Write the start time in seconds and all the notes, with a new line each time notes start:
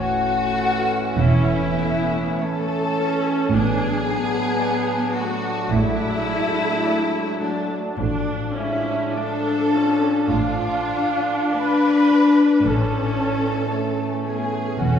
Already playing: A2 E3 A3 C#4 A4 C#5
0.00 A3 F#4 C#5 F#5
0.58 A4
1.17 E1 E2 E3 A3 C#4 E4 E5
1.78 A3 B3
2.38 A3 C#4 A4 C#5 A5
2.97 C#4 A4
3.52 A1 A2 F#3 B3 D4 G#4 G#5
4.08 B3 D4
4.60 D5
5.17 A3 F#4 F#5
5.72 A1 A2 G#3 A3 E4 E5
6.29 D4
6.85 D5
7.40 F#3 D4 F#4 D5
7.96 A1 A2 F3 D4
8.56 G#3 C#4 D4 E4 E5
9.16 D4 A4 D5 A5
9.74 C#4 F4
10.31 A1 A2 A3 D4 F4 F5
10.93 D4
11.53 D4 B4 D5 B5
12.10 F4
12.64 A1 A2 E3 C#4 A4 A5
13.20 C#4
13.72 A3 C#4 C#5 E5
14.26 B3 G#4 C#5 G#5
14.79 E1 E2 E3 A3 C#4 F#4 F#5